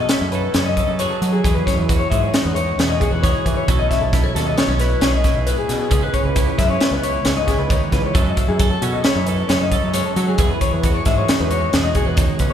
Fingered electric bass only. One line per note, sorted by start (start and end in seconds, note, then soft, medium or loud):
0.21 0.47 F#2 medium
0.55 0.80 F#2 medium
0.88 1.05 F#2 medium
1.22 1.39 F#3 medium
1.45 1.62 E2 medium
1.78 2.04 E2 medium
2.11 2.29 G#2 medium
2.45 2.71 E2 medium
2.78 3.04 E2 medium
3.12 3.30 E2 medium
3.46 3.63 E3 medium
3.68 3.85 B1 medium
4.01 4.27 B1 medium
4.35 4.52 D#2 medium
4.68 4.94 B1 medium
5.01 5.27 B1 medium
5.36 5.53 B1 medium
5.69 5.86 B2 medium
5.91 6.09 C#2 medium
6.25 6.51 C#2 medium
6.59 6.76 F#2 medium
6.91 7.17 C#2 medium
7.26 7.52 C#2 medium
7.58 7.76 C#2 medium
7.92 8.10 C#2 medium
8.15 8.32 F#2 medium
8.49 8.75 F#2 medium
8.82 8.99 B2 medium
9.16 9.41 F#2 medium
9.49 9.75 F#2 medium
9.84 10.01 F#2 medium
10.16 10.34 F#3 loud
10.39 10.56 E2 medium
10.73 10.99 E2 medium
11.06 11.23 G#2 medium
11.40 11.66 E2 medium
11.74 11.99 E2 medium
12.07 12.24 E2 medium
12.40 12.53 C#2 medium